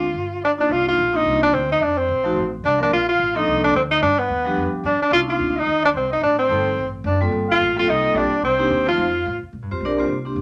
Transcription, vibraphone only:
0.58 0.95 A#3 medium
0.58 0.95 D4 medium
0.58 0.95 D#4 medium
0.58 0.95 F4 medium
1.13 1.50 A#3 medium
1.13 1.50 C4 medium
1.13 1.51 D4 medium
1.13 1.50 D#4 medium
1.13 1.51 F4 medium
2.24 2.34 F3 medium
2.24 2.34 A3 medium
2.24 2.35 C4 medium
2.24 2.35 D#4 medium
2.24 2.35 F#4 medium
2.79 2.89 F3 medium
2.79 2.89 A#3 medium
2.79 2.89 C4 medium
2.79 2.90 D4 medium
2.79 2.90 A#4 medium
3.35 3.71 F3 medium
3.35 3.71 A#3 medium
3.35 3.72 C4 medium
3.35 3.72 D4 medium
3.35 3.72 A4 medium
4.45 4.82 F3 medium
4.45 4.82 G3 medium
4.45 4.82 B3 medium
4.45 4.82 D4 medium
4.45 4.82 G4 medium
5.11 5.26 A3 medium
5.11 5.26 B3 soft
5.11 5.26 C#4 medium
5.11 5.26 D4 medium
5.11 5.26 E4 medium
5.27 5.52 A#3 medium
5.27 5.52 C4 medium
5.27 5.53 D4 medium
5.27 5.52 D#4 medium
5.27 5.53 F4 medium
6.50 6.65 G3 medium
6.50 6.65 A3 medium
6.50 6.65 C4 medium
6.50 6.65 D#4 medium
6.50 6.65 A4 medium
7.21 7.58 G3 medium
7.21 7.58 A#3 medium
7.21 7.58 C4 medium
7.21 7.58 F4 medium
7.21 7.58 A4 medium
7.76 8.13 G3 medium
7.76 8.13 A#3 medium
7.76 8.13 C4 medium
7.76 8.13 F4 medium
7.76 8.14 A4 medium
8.14 8.30 G3 medium
8.14 8.30 A#3 medium
8.14 8.30 C4 medium
8.14 8.30 F4 medium
8.14 8.30 G4 medium
8.58 8.85 A#3 medium
8.58 8.85 C4 medium
8.58 8.86 D4 medium
8.58 8.85 D#4 medium
8.58 8.86 G4 medium
8.87 8.97 F3 medium
8.87 8.97 A3 medium
8.87 8.97 C4 medium
8.87 8.97 D#4 medium
8.87 8.98 C5 medium
9.71 9.82 C4 medium
9.71 9.82 F4 medium
9.71 9.82 G4 medium
9.71 9.82 C5 medium
9.85 9.97 D4 medium
9.85 9.97 G4 medium
9.85 10.00 A#4 medium
9.85 9.99 D5 medium
9.97 10.08 A#3 medium
9.97 10.08 C4 medium
9.97 10.07 D4 medium
9.97 10.10 F4 medium
9.97 10.08 G4 medium
9.97 10.09 C5 medium
10.25 10.42 A#3 medium
10.25 10.42 C4 medium
10.25 10.42 D4 medium
10.25 10.42 G4 medium

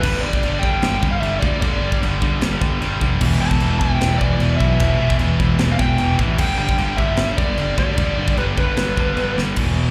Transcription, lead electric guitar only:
0.00 0.22 B4 loud
0.21 0.63 D5 loud
0.59 1.07 G5 loud
1.11 1.20 F5 medium
1.20 1.40 E5 medium
1.40 1.60 D5 medium
1.61 1.99 D5 medium
3.41 3.79 A5 loud
3.80 4.17 G5 loud
4.18 4.57 D5 medium
4.58 5.15 E5 medium
5.72 5.79 F5 medium
5.79 6.16 G5 loud
6.39 6.57 G5 loud
6.58 7.00 G5 loud
6.97 7.37 E5 loud
7.38 7.78 D5 medium
7.79 8.34 D5 loud
8.38 8.44 B4 medium
8.58 9.34 B4 medium

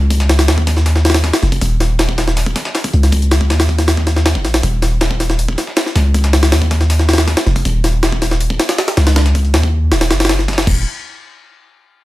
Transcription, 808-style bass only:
0.00 0.50 C#2 medium
0.48 1.32 D#2 medium
1.43 1.60 F1 loud
1.62 2.54 D#1 loud
2.94 3.52 C#2 medium
3.50 4.37 D#2 medium
4.35 4.46 F1 medium
4.45 4.62 A#1 medium
4.63 5.56 D#1 loud
5.96 6.54 C#2 medium
6.52 7.36 D#2 medium
7.47 7.63 F1 loud
7.65 8.58 D#1 loud
8.97 9.55 C#2 medium
9.54 9.93 D#2 medium
9.92 10.12 D#1 loud
10.11 10.66 F#1 medium
10.67 10.85 D#1 loud

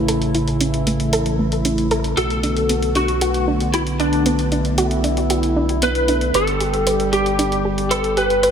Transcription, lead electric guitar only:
2.17 2.92 A4 loud
2.96 3.44 F#4 medium
3.74 3.81 E4 loud
4.00 4.48 D4 loud
5.83 6.37 B4 loud
6.35 7.12 A4 loud
7.13 7.61 G4 medium
7.91 8.15 A4 medium
8.17 8.51 B4 loud

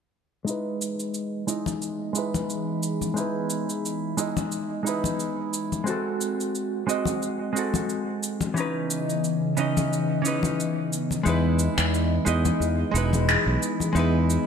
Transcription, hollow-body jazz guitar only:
0.45 1.43 G#3 medium
0.45 1.44 D#4 medium
0.49 1.46 E4 medium
0.49 1.46 B4 medium
1.47 2.12 G#3 medium
1.47 2.12 D#4 medium
1.47 2.13 E4 medium
1.47 2.13 D#5 medium
2.13 3.12 G#3 medium
2.13 3.13 D#4 medium
2.13 3.14 E4 medium
2.19 3.15 B4 medium
3.14 4.13 G#3 medium
3.14 4.14 D#4 medium
3.18 4.15 E4 medium
3.18 4.16 B4 medium
4.17 4.81 G#3 medium
4.17 4.82 D#4 medium
4.17 4.82 E4 medium
4.17 4.83 D#5 medium
4.83 5.82 G#3 medium
4.83 5.83 D#4 medium
4.87 5.84 E4 medium
4.87 5.85 B4 medium
5.84 6.83 G#3 medium
5.84 6.84 C4 medium
5.84 6.85 F#4 medium
5.90 6.86 A4 medium
6.87 7.51 G#3 medium
6.87 7.51 C4 medium
6.87 7.52 F#4 medium
6.87 7.52 D#5 medium
7.53 8.51 G#3 medium
7.53 8.52 C4 medium
7.53 8.53 F#4 medium
7.59 8.54 A4 medium
8.54 9.53 E3 medium
8.54 9.54 C#4 medium
8.54 9.54 D#4 medium
8.60 9.56 B4 medium
9.57 10.21 E3 medium
9.57 10.21 C#4 medium
9.57 10.22 D#4 medium
9.57 10.22 D#5 medium
10.22 11.21 E3 medium
10.22 11.22 C#4 medium
10.26 11.23 D#4 medium
10.26 11.24 B4 medium
11.23 12.22 G#3 medium
11.23 12.23 D#4 medium
11.23 12.24 E4 medium
11.29 12.25 B4 medium
12.25 12.90 G#3 medium
12.25 12.90 D#4 medium
12.25 12.91 E4 medium
12.25 12.91 D#5 medium
12.91 13.90 G#3 medium
12.91 13.92 D#4 medium
12.96 13.93 E4 medium
12.96 13.94 B4 medium
13.93 14.46 G#3 medium
13.93 14.46 D#4 medium
13.97 14.46 E4 medium
13.97 14.46 B4 medium

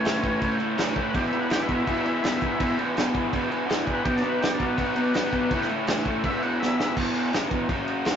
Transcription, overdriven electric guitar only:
0.05 0.22 A2 medium
0.05 0.23 E3 medium
0.05 0.23 A3 medium
0.23 0.39 A2 medium
0.23 0.41 E3 medium
0.23 0.41 A3 medium
0.40 0.58 A2 loud
0.40 0.59 E3 loud
0.40 0.59 A3 loud
0.59 0.76 A2 loud
0.59 0.78 E3 medium
0.59 0.78 A3 medium
0.77 0.95 A2 medium
0.77 0.96 E3 medium
0.77 0.97 A3 medium
0.96 1.13 A2 medium
0.96 1.14 E3 medium
0.96 1.14 A3 medium
1.14 1.31 E2 loud
1.14 1.32 B2 loud
1.14 1.33 E3 loud
1.32 1.48 E2 medium
1.32 1.49 B2 medium
1.32 1.50 E3 loud
1.49 1.67 E2 medium
1.49 1.67 B2 medium
1.49 1.69 E3 medium
1.67 1.84 E2 medium
1.67 1.86 B2 medium
1.67 1.87 E3 medium
1.86 2.03 E2 medium
1.86 2.04 B2 loud
1.86 2.05 E3 loud
2.05 2.22 E2 loud
2.05 2.22 B2 medium
2.05 2.23 E3 loud
2.23 2.40 E2 medium
2.23 2.41 B2 medium
2.23 2.42 E3 medium
2.41 2.59 E2 medium
2.41 2.60 B2 medium
2.41 2.60 E3 medium
2.60 2.77 E2 loud
2.60 2.78 B2 loud
2.60 2.79 E3 loud
2.78 2.94 E2 medium
2.78 2.95 B2 medium
2.78 2.96 E3 loud
2.95 3.13 E2 medium
2.95 3.14 B2 medium
2.95 3.14 E3 medium
3.14 3.31 E2 medium
3.14 3.32 B2 medium
3.14 3.33 E3 medium
3.32 3.48 E2 loud
3.32 3.48 B2 loud
3.32 3.49 E3 loud
3.49 3.66 E2 loud
3.49 3.66 B2 loud
3.49 3.67 E3 loud
3.67 3.84 E2 medium
3.67 3.84 B2 medium
3.67 3.85 E3 medium
3.85 4.03 E2 medium
3.85 4.03 B2 medium
3.85 4.04 E3 medium
4.05 4.21 B2 loud
4.05 4.22 F#3 loud
4.05 4.23 B3 loud
4.22 4.40 B2 medium
4.22 4.41 F#3 loud
4.22 4.42 B3 loud
4.41 4.57 B2 medium
4.41 4.58 F#3 medium
4.41 4.59 B3 medium
4.58 4.76 B2 medium
4.58 4.77 F#3 medium
4.58 4.77 B3 medium
4.77 4.94 B2 loud
4.77 4.95 F#3 loud
4.77 4.95 B3 loud
4.95 5.13 B2 medium
4.95 5.13 F#3 medium
4.95 5.14 B3 medium
5.14 5.31 B2 medium
5.14 5.32 F#3 medium
5.14 5.33 B3 medium
5.32 5.49 B2 medium
5.32 5.50 F#3 medium
5.32 5.50 B3 loud
5.52 5.68 A2 loud
5.52 5.69 E3 loud
5.52 5.70 A3 loud
5.69 5.86 A2 medium
5.69 5.88 E3 loud
5.69 5.88 A3 loud
5.87 6.05 A2 medium
5.87 6.06 E3 medium
5.87 6.07 A3 loud
6.07 6.23 A2 medium
6.07 6.23 E3 medium
6.07 6.24 A3 medium
6.24 6.41 E2 loud
6.24 6.43 B2 loud
6.24 6.43 E3 loud
6.43 6.60 E2 medium
6.43 6.61 B2 loud
6.43 6.61 E3 medium
6.62 6.77 E2 medium
6.62 6.78 B2 medium
6.62 6.79 E3 medium
6.78 6.95 E2 medium
6.78 6.96 B2 loud
6.78 6.96 E3 medium
6.96 7.32 E2 loud
6.96 7.33 B2 loud
6.96 7.33 E3 loud
7.32 7.50 F#2 medium
7.32 7.50 C#3 loud
7.32 7.51 F#3 medium
7.50 7.69 E2 medium
7.50 7.69 B2 medium
7.50 7.69 E3 medium
7.69 8.16 F#2 medium
7.69 8.16 C#3 loud
7.69 8.16 F#3 loud

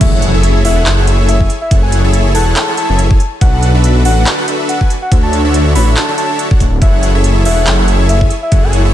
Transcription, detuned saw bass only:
0.01 0.66 F#1 loud
0.65 0.85 E1 medium
0.86 1.49 F#1 loud
1.71 2.36 F#1 loud
2.35 2.55 E1 medium
2.89 3.19 F#1 loud
3.41 4.07 B1 loud
4.05 4.25 A1 medium
5.12 5.77 D2 loud
5.75 5.95 A1 medium
6.60 6.80 D1 medium
6.82 7.47 F#1 loud
7.46 7.65 E1 medium
7.67 8.30 F#1 loud
8.52 8.94 F#1 loud

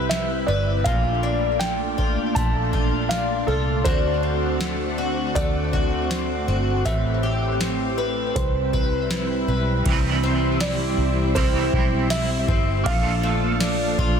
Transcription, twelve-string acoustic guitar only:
0.00 0.85 C3 medium
0.00 0.93 C4 medium
0.00 0.47 B4 medium
0.11 0.86 E4 soft
0.48 0.93 B4 medium
0.86 3.86 A#2 medium
0.86 1.97 F4 medium
1.23 3.10 D4 medium
1.60 2.35 A3 soft
1.98 2.72 F4 medium
2.36 4.60 A3 medium
2.73 3.47 F4 medium
3.10 4.23 D4 medium
3.48 3.85 F4 medium
3.85 6.85 D3 medium
3.85 4.97 F#4 medium
4.23 6.10 C4 medium
4.60 5.35 A3 medium
4.98 5.72 F#4 medium
5.35 6.93 A3 medium
5.73 6.47 F#4 medium
6.11 7.60 C4 medium
6.48 6.93 F#4 medium
6.86 8.36 A2 medium
6.86 7.97 B4 medium
7.23 9.10 G4 medium
7.61 8.76 C4 medium
7.98 8.73 B4 medium
8.73 9.48 B4 medium
9.10 10.60 E4 soft
9.48 10.26 B4 soft
10.23 12.47 C4 medium
10.61 11.34 E4 medium
11.36 12.09 E4 medium
12.11 12.93 E4 medium
12.48 12.93 C4 medium
13.23 14.20 A3 medium
13.61 14.20 D4 medium
13.99 14.20 F4 medium

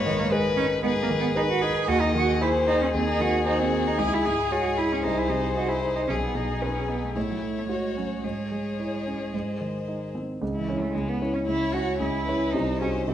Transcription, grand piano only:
0.00 0.80 G#2 medium
0.06 0.48 D#3 medium
0.32 0.55 G#4 medium
0.32 0.55 B4 medium
0.57 0.99 D#4 soft
0.84 1.85 G#2 medium
1.10 1.52 D#3 medium
1.36 1.60 G#4 medium
1.36 1.60 B4 soft
1.63 1.89 D#4 soft
1.88 2.90 D#2 medium
2.15 2.56 D#3 medium
2.41 2.64 G#4 soft
2.41 2.65 C5 medium
2.68 3.09 D#4 soft
2.95 3.96 D#2 soft
3.20 3.62 D#3 soft
3.46 3.69 G#4 soft
3.46 3.70 C5 soft
3.72 3.99 D#4 soft
3.99 5.01 C#2 medium
4.26 4.68 G#2 soft
4.51 4.75 G#4 soft
4.51 4.75 C#5 soft
4.77 5.04 E4 soft
5.05 6.07 C2 soft
5.29 5.72 C3 soft
5.56 5.81 G#4 soft
5.56 5.81 D#5 soft
5.83 6.10 D#4 soft
6.10 7.12 B1 soft
6.35 6.78 B2 soft
6.62 6.86 G#4 soft
6.62 6.86 B4 soft
6.88 7.15 D#4 soft
7.16 8.20 A2 soft
7.42 7.85 A3 soft
7.69 7.94 F#4 soft
7.69 7.94 C#5 soft
7.97 8.24 C#4 soft
8.24 9.30 G#2 soft
8.51 8.95 G#3 soft
8.79 9.03 E4 soft
8.79 9.04 C#5 soft
9.07 9.33 C#4 soft
9.34 10.38 G#2 soft
9.61 10.03 D#3 soft
9.88 10.12 D#4 soft
9.88 10.12 D#5 soft
10.15 10.42 C4 soft
10.41 10.67 C#2 soft
10.41 10.67 C#3 soft
10.68 10.92 C#4 soft
10.68 10.92 E4 soft
10.68 10.93 C#5 soft
10.95 11.21 C#2 soft
10.95 11.20 C#3 soft
11.21 11.45 C#4 soft
11.21 11.45 E4 soft
11.21 11.45 C#5 soft
11.48 11.73 C#2 soft
11.48 11.73 C#3 soft
11.74 11.98 C#4 soft
11.74 11.98 E4 soft
11.74 11.98 C#5 soft
12.00 12.26 C#2 soft
12.00 12.26 C#3 soft
12.28 12.51 C#4 soft
12.28 12.52 E4 soft
12.28 12.52 C#5 soft
12.54 12.80 C2 soft
12.54 12.80 C3 soft
12.81 13.04 D#4 soft
12.81 13.04 F#4 soft
12.81 13.05 G#4 soft
13.08 13.14 C2 soft
13.08 13.14 C3 soft

